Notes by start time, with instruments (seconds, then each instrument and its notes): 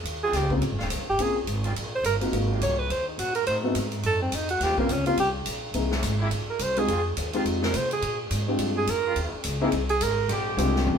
0.03 upright bass D#2, ride
0.23 trombone section C#3 G3 C4 F4, alto saxophone G#4
0.32 upright bass C#2, alto saxophone G4, snare, hi-hat pedal, ride
0.50 grand piano A#3 C4 C#4 F4 G4, kick
0.61 upright bass A#1, ride
0.71 upright bass G1
0.79 upright bass D#1, trombone section C#3 G3 C4 F4, snare
0.90 upright bass C2, hi-hat pedal, ride
1.00 upright bass A#1
1.09 upright bass G1, alto saxophone G4
1.19 upright bass A#1, grand piano A#3 C4 C#4 F4 G#4, alto saxophone G#4, ride
1.47 upright bass G#1, hi-hat pedal, ride
1.64 trombone section C#3 G3 C4 F4, ride
1.75 upright bass A#1, ride
1.96 alto saxophone C5
2.04 upright bass G1, alto saxophone A#4, hi-hat pedal, ride
2.21 grand piano A#3 C4 D#4 F4 F#4, ride
2.32 upright bass G#1, grand piano A#3 C4 D#4 F4 F#4, ride
2.50 trombone section C3 F#3 A#3
2.61 upright bass C2, alto saxophone C#5, hi-hat pedal, ride
2.79 alto saxophone B4
2.90 upright bass D#2, alto saxophone C5, ride
3.08 alto saxophone D#4
3.18 upright bass A#2, alto saxophone F#4, hi-hat pedal, ride
3.35 alto saxophone A#4, ride
3.47 upright bass A2, trombone section C3 F#3 A3 D#4, alto saxophone C5, ride
3.64 grand piano A3 B3 C4 D#4 F#4
3.75 upright bass G#2, hi-hat pedal, ride
3.92 ride
4.03 upright bass F#2, alto saxophone A4, ride
4.22 alto saxophone C4
4.32 upright bass F2, alto saxophone D#4, hi-hat pedal, ride
4.49 alto saxophone F#4, ride
4.60 upright bass D#2, trombone section C#3 G3 C4 F4, alto saxophone G4, snare, ride
4.78 grand piano A#3 C4 C#4 F4 G4, alto saxophone A#3, kick
4.89 upright bass C#2, alto saxophone C#4, hi-hat pedal, ride
5.06 grand piano A#3 C4 C#4 F4 G4, alto saxophone F4, ride
5.17 upright bass C2, alto saxophone G4, ride
5.46 upright bass A#1, hi-hat pedal, ride
5.74 upright bass C2, grand piano A#3 C4 D#4 E4 G#4, ride
5.91 trombone section C3 G#3 A#3 E4, snare
6.03 upright bass G#1, hi-hat pedal, ride
6.20 trombone section C3 G#3 A#3 E4
6.31 upright bass A#1, ride
6.48 alto saxophone A#4, muted upright bass stroke
6.59 upright bass C2, alto saxophone C5, hi-hat pedal, ride
6.76 grand piano G#3 C4 D#4 F4 G4, alto saxophone G#4, ride
6.88 upright bass F2, trombone section D#3 G#3 C4 F4, ride
7.17 upright bass D#2, hi-hat pedal, ride
7.33 trombone section D#3 G#3 C4 F4, grand piano G#3 C4 D#4 F4 G4, ride
7.45 upright bass F2, ride
7.62 alto saxophone A#4, snare
7.74 upright bass C3, alto saxophone C5, hi-hat pedal, ride
7.91 alto saxophone G#4, ride
8.02 upright bass A#2, ride
8.31 upright bass G#2, hi-hat pedal, ride
8.48 grand piano G#3 C4 D4 F4 G4
8.59 upright bass G2, ride
8.78 alto saxophone G#4
8.87 upright bass F2, alto saxophone A#4, hi-hat pedal, ride
9.04 trombone section C#3 G3 C4 F4
9.16 upright bass D#2, ride
9.33 muted upright bass stroke
9.44 upright bass C#2, hi-hat pedal, ride
9.60 trombone section C3 G#3 A#3 E4, grand piano A#3 C4 D#4 E4 G#4
9.72 upright bass C2, ride
9.89 alto saxophone G#4, ride
10.01 upright bass G#1, alto saxophone A#4, hi-hat pedal, ride
10.28 upright bass A#1, trombone section D3 G#3 C4 G4, ride
10.57 upright bass C2, grand piano G#3 C4 D4 F4 G4, hi-hat pedal, ride
10.76 snare
10.87 upright bass D2, high tom